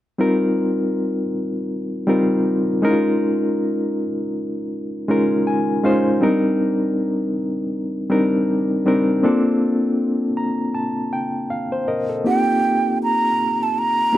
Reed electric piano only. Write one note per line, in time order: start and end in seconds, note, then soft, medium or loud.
0.18 1.24 G3 medium
0.18 1.24 C4 medium
0.18 1.25 D#4 medium
0.18 1.25 F4 medium
0.18 1.25 A#4 medium
2.07 2.62 G3 medium
2.07 2.62 C4 medium
2.07 2.62 D#4 medium
2.07 2.63 F4 medium
2.07 2.63 A#4 medium
2.82 4.04 G#3 medium
2.82 4.05 C#4 medium
2.82 4.05 D#4 medium
2.82 2.91 E4 medium
2.82 4.06 A#4 medium
2.90 4.09 F4 medium
5.08 5.63 G#3 medium
5.08 5.63 C#4 medium
5.08 5.64 D#4 medium
5.08 5.64 F4 medium
5.08 5.64 A#4 medium
5.47 5.82 G#5 medium
5.84 6.12 G#3 medium
5.84 6.12 C#4 medium
5.84 6.13 D#4 medium
5.84 6.13 F4 medium
5.84 6.13 C5 medium
5.84 6.20 F5 medium
6.21 7.27 G3 medium
6.21 7.27 C4 medium
6.21 7.28 D4 medium
6.21 7.28 D#4 medium
6.21 7.28 A#4 medium
8.10 8.65 G3 medium
8.10 8.65 C4 medium
8.10 8.65 D4 medium
8.10 8.65 D#4 medium
8.10 8.66 A#4 medium
8.86 9.14 G3 medium
8.86 9.14 C4 medium
8.86 9.15 D4 medium
8.86 9.15 D#4 medium
8.86 9.15 A#4 medium
9.23 10.29 A#3 medium
9.23 10.29 C4 medium
9.23 10.30 D4 medium
9.23 10.30 F4 medium
9.23 10.30 A4 medium
10.37 10.72 A#5 medium
10.75 11.10 A5 medium
11.13 11.48 G5 medium
11.50 11.85 F5 medium
11.72 11.87 C5 medium
11.88 12.09 A#4 medium
11.88 12.23 D#5 medium
12.09 12.46 A4 medium
12.24 13.30 A#3 medium
12.24 13.31 C4 medium
12.24 13.31 D#4 medium
12.24 13.31 F4 medium
12.24 13.32 G4 medium
14.12 14.18 A#3 medium
14.12 14.18 C4 medium
14.12 14.18 D#4 medium
14.12 14.18 F4 medium